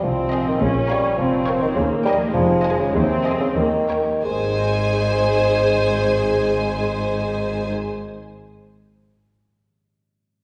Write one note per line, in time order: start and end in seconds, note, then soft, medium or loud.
0.00 0.49 C2 soft
0.00 1.69 F3 soft
0.00 0.46 F3 medium
0.00 0.56 G#3 soft
0.00 0.57 C4 soft
0.00 0.58 D#4 soft
0.00 0.55 F4 soft
0.32 0.54 G#4 soft
0.32 0.54 D#5 soft
0.32 0.53 F5 soft
0.42 1.69 A#2 soft
0.47 0.60 D#3 medium
0.47 1.61 A#3 soft
0.51 2.32 C#4 soft
0.56 1.76 F4 soft
0.61 1.06 A#1 medium
0.61 1.06 A#2 soft
0.61 0.74 C#3 medium
0.61 1.17 C#4 medium
0.90 1.20 G3 medium
0.90 1.11 A#4 soft
0.90 1.11 C#5 soft
0.90 1.11 F5 soft
1.18 1.64 F1 medium
1.18 1.64 F2 medium
1.18 1.61 F3 medium
1.18 1.75 C4 medium
1.47 1.68 A#4 soft
1.47 1.69 C#5 soft
1.47 1.68 F5 soft
1.58 2.27 D#3 soft
1.62 1.68 D#3 medium
1.62 2.29 A#3 soft
1.67 2.24 D#4 soft
1.71 2.34 G4 soft
1.76 2.22 D#2 medium
1.76 1.89 C#3 medium
1.76 2.34 A#3 medium
2.05 2.18 G3 medium
2.05 2.27 A#4 soft
2.05 2.27 D#5 soft
2.05 2.27 G5 soft
2.16 2.87 F3 soft
2.21 2.80 G#3 soft
2.25 2.84 D#4 soft
2.29 2.88 G#4 soft
2.34 2.81 F1 medium
2.34 2.82 F2 medium
2.34 2.78 F3 medium
2.34 2.94 G#3 medium
2.64 2.86 G#4 medium
2.64 2.86 D#5 soft
2.64 2.86 G#5 medium
2.76 2.95 C#3 medium
2.76 3.37 D#3 soft
2.81 3.53 G#3 soft
2.85 4.43 D#4 soft
2.89 3.40 C3 medium
2.89 3.57 G#4 soft
2.94 3.44 D#2 medium
2.94 3.56 C4 medium
3.25 3.49 G#4 soft
3.25 3.49 D#5 soft
3.25 3.49 G#5 soft
3.39 3.48 C#3 medium
3.39 4.17 D#3 soft
3.43 4.19 A#3 soft
3.48 4.22 C#4 soft
3.52 4.22 D#3 medium
3.52 4.24 G4 soft
3.57 4.10 D#2 medium
3.57 3.89 A#3 soft
3.90 4.15 A#4 soft
3.90 4.15 C#5 soft
3.90 4.16 G5 soft
4.23 7.71 G#1 soft
4.23 8.41 G#2 soft
4.23 7.71 G#2 soft
4.23 7.71 G#3 medium
4.23 7.71 G#4 soft
4.23 7.71 C5 soft
4.23 7.71 G#5 soft
4.30 8.44 G#3 soft
4.37 8.48 C4 soft
4.44 8.51 D#4 soft
4.52 8.55 G#4 soft
4.58 8.58 D#5 soft